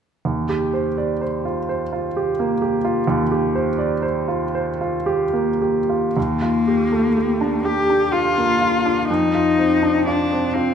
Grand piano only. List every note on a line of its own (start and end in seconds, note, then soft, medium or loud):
0.25 3.04 D#2 soft
0.49 0.88 G4 soft
0.74 1.12 C5 soft
0.98 1.21 D5 soft
1.21 1.59 C5 soft
1.45 1.83 F4 soft
1.69 2.07 C5 soft
1.93 2.30 F4 soft
2.17 2.53 G4 soft
2.39 2.76 A#3 soft
2.62 2.99 G4 soft
2.85 3.21 F4 soft
3.08 6.12 D#2 soft
3.32 3.69 G4 soft
3.55 3.93 C5 soft
3.78 4.02 D5 soft
4.02 4.42 C5 soft
4.28 4.69 F4 soft
4.55 4.95 C5 soft
4.81 5.22 F4 soft
5.06 5.50 G4 soft
5.33 5.79 A#3 soft
5.62 6.06 G4 soft
5.89 6.17 F4 soft
6.17 9.05 D#2 soft
6.42 6.83 F4 soft
6.68 7.07 G4 soft
6.92 7.17 A4 soft
7.17 7.55 G4 soft
7.41 7.79 D4 soft
7.65 8.03 G4 soft
7.90 8.27 D4 soft
8.13 8.51 F4 soft
8.38 8.75 A#3 soft
8.61 8.99 F4 soft
8.85 9.09 D4 soft
9.10 10.74 F2 soft
9.35 9.73 F4 soft
9.58 9.96 C4 soft
9.83 10.06 D4 soft
10.07 10.45 F4 soft
10.33 10.70 C4 soft
10.55 10.74 F4 soft